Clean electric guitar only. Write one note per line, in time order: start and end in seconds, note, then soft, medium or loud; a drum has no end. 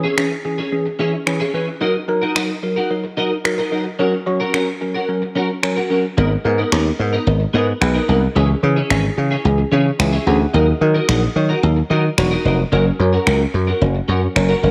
0.04 0.16 C#4 medium
0.04 0.17 E4 medium
0.04 0.18 G#4 medium
0.17 0.35 C#4 medium
0.17 0.31 E4 medium
0.17 0.30 G#4 loud
0.31 muted clean electric guitar stroke soft
0.45 muted clean electric guitar stroke soft
0.58 0.73 C#4 medium
0.58 0.73 E4 medium
0.58 0.72 G#4 medium
0.86 muted clean electric guitar stroke soft
0.99 1.17 C#4 medium
0.99 1.13 E4 medium
0.99 1.12 G#4 medium
1.13 muted clean electric guitar stroke soft
1.27 muted clean electric guitar stroke soft
1.40 1.52 C#4 medium
1.40 1.53 E4 medium
1.40 1.54 G#4 medium
1.54 1.68 C#4 medium
1.54 1.67 E4 medium
1.54 1.66 G#4 medium
1.67 muted clean electric guitar stroke soft
1.81 1.99 D#4 medium
1.81 1.95 F#4 medium
1.81 1.93 A#4 medium
1.95 muted clean electric guitar stroke soft
2.08 muted clean electric guitar stroke soft
2.22 2.34 D#4 medium
2.22 2.35 F#4 medium
2.22 2.36 A#4 medium
2.35 2.53 D#4 medium
2.35 2.49 F#4 medium
2.35 2.48 A#4 medium
2.49 muted clean electric guitar stroke medium
2.63 muted clean electric guitar stroke soft
2.76 2.91 D#4 medium
2.76 2.91 F#4 medium
2.76 2.90 A#4 medium
3.04 muted clean electric guitar stroke soft
3.17 3.35 D#4 medium
3.17 3.31 F#4 medium
3.17 3.30 A#4 medium
3.31 muted clean electric guitar stroke medium
3.45 muted clean electric guitar stroke soft
3.58 3.71 D#4 medium
3.58 3.71 F#4 medium
3.58 3.72 A#4 medium
3.72 3.86 D#4 medium
3.72 3.85 F#4 medium
3.72 3.84 A#4 medium
3.85 muted clean electric guitar stroke soft
3.99 4.17 C#4 medium
3.99 4.13 F#4 medium
3.99 4.12 A#4 medium
4.13 muted clean electric guitar stroke medium
4.27 muted clean electric guitar stroke soft
4.40 4.53 C#4 medium
4.40 4.53 F#4 medium
4.40 4.54 A#4 medium
4.54 4.71 C#4 medium
4.54 4.67 F#4 medium
4.54 4.66 A#4 medium
4.68 muted clean electric guitar stroke soft
4.81 muted clean electric guitar stroke soft
4.95 5.09 C#4 medium
4.95 5.09 F#4 medium
4.95 5.08 A#4 medium
5.22 muted clean electric guitar stroke soft
5.35 5.53 C#4 medium
5.35 5.49 F#4 medium
5.35 5.48 A#4 medium
5.49 muted clean electric guitar stroke soft
5.63 muted clean electric guitar stroke soft
5.76 5.89 C#4 medium
5.76 5.90 F#4 medium
5.76 5.90 A#4 medium
5.90 6.04 C#4 medium
5.90 6.04 F#4 medium
5.90 6.03 A#4 medium
6.04 muted clean electric guitar stroke soft
6.17 6.35 B3 medium
6.17 6.31 D#4 medium
6.17 6.30 A#4 medium
6.31 muted clean electric guitar stroke soft
6.45 muted clean electric guitar stroke soft
6.58 6.71 B3 medium
6.58 6.72 D#4 medium
6.58 6.72 A#4 medium
6.72 6.90 B3 medium
6.72 6.86 D#4 medium
6.72 6.85 A#4 medium
6.86 muted clean electric guitar stroke soft
6.99 muted clean electric guitar stroke soft
7.13 7.27 B3 medium
7.13 7.27 D#4 medium
7.13 7.27 A#4 medium
7.40 muted clean electric guitar stroke soft
7.54 7.71 B3 medium
7.54 7.67 D#4 medium
7.54 7.66 A#4 medium
7.67 muted clean electric guitar stroke soft
7.81 muted clean electric guitar stroke soft
7.95 8.07 B3 medium
7.95 8.08 D#4 medium
7.95 8.09 A#4 medium
8.08 8.22 B3 medium
8.08 8.22 D#4 medium
8.08 8.21 A#4 medium
8.22 muted clean electric guitar stroke soft
8.35 8.53 C#4 medium
8.35 8.49 E4 medium
8.35 8.48 G#4 medium
8.49 muted clean electric guitar stroke soft
8.63 muted clean electric guitar stroke soft
8.76 8.89 C#4 soft
8.76 8.90 E4 medium
8.76 8.90 G#4 medium
8.90 9.08 C#4 medium
8.90 9.04 E4 medium
8.90 9.03 G#4 medium
9.04 muted clean electric guitar stroke soft
9.17 muted clean electric guitar stroke soft
9.31 9.46 C#4 medium
9.31 9.45 E4 medium
9.31 9.45 G#4 medium
9.58 muted clean electric guitar stroke soft
9.72 9.89 C#4 medium
9.72 9.85 E4 medium
9.72 9.84 G#4 medium
9.86 muted clean electric guitar stroke soft
9.99 muted clean electric guitar stroke soft
10.13 10.25 C#4 medium
10.13 10.26 E4 medium
10.13 10.27 G#4 medium
10.26 10.40 C#4 medium
10.26 10.40 E4 medium
10.26 10.39 G#4 medium
10.40 muted clean electric guitar stroke soft
10.54 10.71 D#4 medium
10.54 10.67 F#4 medium
10.54 10.66 A#4 medium
10.67 muted clean electric guitar stroke soft
10.81 muted clean electric guitar stroke soft
10.95 11.07 D#4 medium
10.95 11.08 F#4 medium
10.95 11.08 A#4 medium
11.08 11.26 D#4 medium
11.08 11.22 F#4 medium
11.08 11.21 A#4 loud
11.22 muted clean electric guitar stroke soft
11.36 muted clean electric guitar stroke soft
11.49 11.64 D#4 soft
11.49 11.63 F#4 medium
11.49 11.63 A#4 medium
11.77 muted clean electric guitar stroke soft
11.90 12.08 D#4 medium
11.90 12.04 F#4 medium
11.90 12.03 A#4 medium
12.04 muted clean electric guitar stroke soft
12.18 muted clean electric guitar stroke soft
12.31 12.44 D#4 medium
12.31 12.44 F#4 medium
12.31 12.45 A#4 medium
12.45 12.59 D#4 medium
12.45 12.58 F#4 medium
12.45 12.57 A#4 medium
12.59 muted clean electric guitar stroke soft
12.72 12.90 C#4 medium
12.72 12.86 F#4 medium
12.72 12.85 A#4 medium
12.86 muted clean electric guitar stroke soft
12.99 muted clean electric guitar stroke soft
13.13 13.25 C#4 soft
13.13 13.26 F#4 medium
13.13 13.27 A#4 medium
13.26 13.44 C#4 medium
13.26 13.40 F#4 medium
13.26 13.39 A#4 medium
13.40 muted clean electric guitar stroke soft
13.54 muted clean electric guitar stroke soft
13.67 13.82 C#4 soft
13.67 13.82 F#4 medium
13.67 13.81 A#4 medium
13.95 muted clean electric guitar stroke soft
14.08 14.26 C#4 medium
14.08 14.22 F#4 medium
14.08 14.21 A#4 loud
14.22 muted clean electric guitar stroke soft
14.36 muted clean electric guitar stroke soft
14.49 14.61 C#4 medium
14.49 14.62 F#4 medium
14.49 14.63 A#4 medium
14.63 14.71 C#4 medium
14.63 14.71 F#4 medium
14.63 14.71 A#4 medium